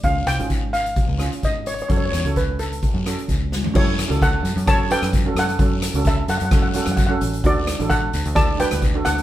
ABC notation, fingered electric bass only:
X:1
M:4/4
L:1/16
Q:"Swing 16ths" 1/4=130
K:F#phr
V:1 name="Fingered electric bass" clef=bass
C,,2 =C,, ^G,,,6 ^C,,2 z G,,,4 | F,,2 E,, C,,6 F,,2 z C,,4 | F,,3 C,,3 F,, F,,4 F,,3 F,,2 | F,,3 C,,3 F,, F,,4 F,,3 A,,,2 |
D,,3 A,,,3 D,, D,,4 D,,3 D,,2 |]